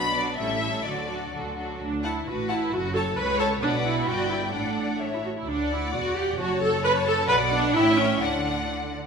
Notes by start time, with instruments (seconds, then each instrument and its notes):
Already playing: double bass section B1, cello section B2, viola section F#3 B3, violin section D4 F#4 B5
0.15 viola section F#3 B3, violin section D4 F#4 D5
0.38 double bass section A1, cello section A2, viola section G3 C#4, violin section E4 A4 E5
0.61 viola section G3 C#4, violin section E4 A4
0.84 double bass section D2, cello section D3, viola section F#3 D4, violin section F#4 A4 D5
1.09 viola section F#3 D4, violin section F#4 A4
1.32 double bass section D2, cello section D3, viola section F#3 D4, violin section F#4 A4
1.57 viola section F#3 D4, violin section F#4 A4
1.80 cello section D2, double bass section D2, viola section D4
2.03 viola section E4, violin section F#5 A5
2.26 double bass section A1, cello section A2, viola section F#4, violin section B4
2.49 viola section E4, violin section F#5 A5
2.72 double bass section F#1, cello section F#2, viola section F#4, violin section A4
2.95 viola section A4, violin section C#5 A5
3.17 double bass section C#2, cello section C#2, viola section B4, violin section C#5
3.39 viola section A4, violin section C#5 A5
3.62 double bass section B1, cello section B2, viola section D4, violin section B4 D5 F#5
3.84 viola section E4
4.07 double bass section G1, cello section G2, viola section F#4, violin section B4 D5 G5
4.30 viola section E4
4.53 double bass section A1, cello section A2, viola section D4, violin section A4 D5 F#5
4.99 violin section C#5 E5
5.13 viola section E4
5.24 viola section F#4
5.36 viola section E4
5.47 double bass section D2, cello section D2, viola section D4, violin section D5 F#5
5.71 viola section E4
5.93 double bass section E1, cello section E2, viola section F#4
6.16 viola section G4
6.38 double bass section F#1, cello section F#2, viola section F#4, violin section C#5 A5
6.61 viola section A4
6.83 viola section B4, violin section C#5 A5
7.06 viola section A4
7.28 double bass section B1, cello section B2, viola section B4, violin section D5 F#5
7.52 viola section D4
7.73 double bass section A1, cello section A2, viola section E4, violin section C#5 E5 G5
7.97 viola section C#4
8.21 double bass section D2, cello section D3, viola section D4, violin section D5 F#5